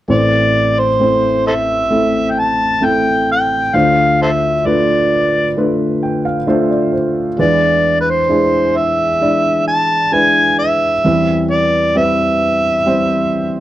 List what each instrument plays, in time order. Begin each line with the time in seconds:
0.08 grand piano A1 A2 A3 C4 E4 C5, harmonica D5
0.79 harmonica C5
1.00 grand piano A3 C4 E4 C5
1.47 harmonica A4 C5 E5
1.90 grand piano A3 C4 E4 A4
2.31 harmonica G5
2.39 harmonica A5
2.81 grand piano A3 C4 E4 A4
2.85 harmonica G5
3.32 harmonica G5
3.74 grand piano D2 D3 A3 D4 F4 C5, harmonica F5
4.22 harmonica A4 C5 E5
4.65 grand piano A3 D4 F4 B4, harmonica D5
5.57 grand piano A3 D4 F4 B4
6.03 grand piano G5
6.25 grand piano F5
6.47 grand piano A3 D4 F4 C5 E5
6.71 grand piano D5
6.93 grand piano C5
7.38 grand piano E2 E3 G#3 D4 E4 B4, harmonica D5
8.01 harmonica B4
8.10 harmonica C5
8.29 grand piano G#3 D4 E4 G#4
8.77 harmonica E5
9.21 grand piano G#3 D4 E4 D5
9.68 harmonica A5
10.12 grand piano G#3 D4 E4 B4, harmonica G#5
10.59 harmonica E5
11.04 grand piano E2 E3 G3 C4 E4 B4
11.51 harmonica D5
11.95 grand piano G3 C4 E4 B4, harmonica E5
12.86 grand piano G3 C4 E4 C5